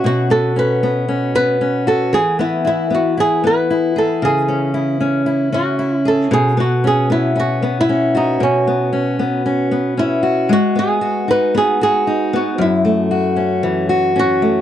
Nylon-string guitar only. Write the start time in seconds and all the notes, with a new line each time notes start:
0.06 F#4
0.31 A4
0.59 B4
1.36 B4
1.88 A4
2.14 G#4
2.41 E4
2.67 E4
2.94 F#4
3.20 G#4
3.47 B4
3.98 A4
4.25 G#4
5.54 F#4
5.96 E4
6.08 A4
6.33 G#4
6.60 F#4
6.87 G#4
7.12 E4
7.40 F#4
7.81 E4
8.17 D#4
8.43 C#4
9.99 E4
10.53 F#4
10.79 G#4
11.31 B4
11.58 G#4
11.83 G#4
12.36 F#4
12.61 E4
14.19 F#4